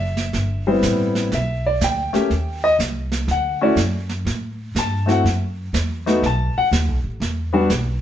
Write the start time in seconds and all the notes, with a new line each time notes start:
Already playing: F#1 E5
0.17 snare
0.33 G1, brush sweep, snare
0.67 G3 B3 C4 E4 C5
0.82 A1, snare, hi-hat pedal
1.15 snare
1.32 B1 E5, brush sweep, snare
1.66 D5
1.81 D2 G5, snare, hi-hat pedal
2.13 A3 A#3 C#4 G4, muted upright bass stroke, snare
2.30 D#2, brush sweep, snare
2.64 D#5
2.79 C2, snare, hi-hat pedal
3.12 snare
3.27 D2 F#5, brush sweep, snare
3.61 A3 C#4 E4 F#4 D5
3.76 F#2, snare, hi-hat pedal
4.09 snare
4.25 A2, brush sweep, snare
4.75 G2 A5, snare, hi-hat pedal
5.06 A3 C4 E4 F#4, snare
5.12 F#5
5.24 F#2, brush sweep, snare
5.73 E2, snare, hi-hat pedal
6.06 A3 B3 D#4 F#4, snare
6.22 B1 A5, brush sweep, snare
6.55 F#5, muted upright bass stroke
6.71 D#2, snare, hi-hat pedal
6.88 B1
7.04 A1
7.20 E2, brush sweep, snare
7.53 G3 B3 D4 F#4
7.70 B1, snare, hi-hat pedal